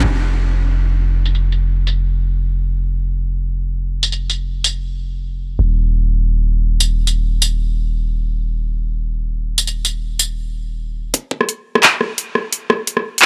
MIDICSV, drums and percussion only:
0, 0, Header, 1, 2, 480
1, 0, Start_track
1, 0, Tempo, 346821
1, 57, Time_signature, 4, 2, 24, 8
1, 18349, End_track
2, 0, Start_track
2, 0, Title_t, "Drums"
2, 1737, Note_on_c, 9, 54, 62
2, 1866, Note_off_c, 9, 54, 0
2, 1866, Note_on_c, 9, 54, 32
2, 2005, Note_off_c, 9, 54, 0
2, 2108, Note_on_c, 9, 54, 34
2, 2247, Note_off_c, 9, 54, 0
2, 2588, Note_on_c, 9, 54, 57
2, 2726, Note_off_c, 9, 54, 0
2, 5575, Note_on_c, 9, 54, 60
2, 5706, Note_off_c, 9, 54, 0
2, 5706, Note_on_c, 9, 54, 33
2, 5845, Note_off_c, 9, 54, 0
2, 5946, Note_on_c, 9, 54, 33
2, 6084, Note_off_c, 9, 54, 0
2, 6425, Note_on_c, 9, 54, 55
2, 6564, Note_off_c, 9, 54, 0
2, 9416, Note_on_c, 9, 54, 61
2, 9554, Note_off_c, 9, 54, 0
2, 9787, Note_on_c, 9, 54, 36
2, 9925, Note_off_c, 9, 54, 0
2, 10266, Note_on_c, 9, 54, 61
2, 10405, Note_off_c, 9, 54, 0
2, 13257, Note_on_c, 9, 54, 64
2, 13388, Note_off_c, 9, 54, 0
2, 13388, Note_on_c, 9, 54, 34
2, 13527, Note_off_c, 9, 54, 0
2, 13629, Note_on_c, 9, 54, 37
2, 13767, Note_off_c, 9, 54, 0
2, 14107, Note_on_c, 9, 54, 61
2, 14246, Note_off_c, 9, 54, 0
2, 15416, Note_on_c, 9, 36, 108
2, 15416, Note_on_c, 9, 42, 82
2, 15554, Note_off_c, 9, 36, 0
2, 15554, Note_off_c, 9, 42, 0
2, 15656, Note_on_c, 9, 36, 99
2, 15787, Note_on_c, 9, 37, 50
2, 15794, Note_off_c, 9, 36, 0
2, 15897, Note_on_c, 9, 42, 63
2, 15925, Note_off_c, 9, 37, 0
2, 16036, Note_off_c, 9, 42, 0
2, 16267, Note_on_c, 9, 37, 76
2, 16375, Note_on_c, 9, 39, 111
2, 16375, Note_on_c, 9, 42, 76
2, 16406, Note_off_c, 9, 37, 0
2, 16513, Note_off_c, 9, 39, 0
2, 16513, Note_off_c, 9, 42, 0
2, 16618, Note_on_c, 9, 37, 54
2, 16756, Note_off_c, 9, 37, 0
2, 16857, Note_on_c, 9, 42, 65
2, 16995, Note_off_c, 9, 42, 0
2, 17095, Note_on_c, 9, 37, 53
2, 17234, Note_off_c, 9, 37, 0
2, 17335, Note_on_c, 9, 42, 81
2, 17473, Note_off_c, 9, 42, 0
2, 17575, Note_on_c, 9, 37, 75
2, 17714, Note_off_c, 9, 37, 0
2, 17816, Note_on_c, 9, 42, 65
2, 17947, Note_on_c, 9, 37, 49
2, 17954, Note_off_c, 9, 42, 0
2, 18085, Note_off_c, 9, 37, 0
2, 18241, Note_on_c, 9, 42, 75
2, 18295, Note_on_c, 9, 39, 119
2, 18349, Note_off_c, 9, 39, 0
2, 18349, Note_off_c, 9, 42, 0
2, 18349, End_track
0, 0, End_of_file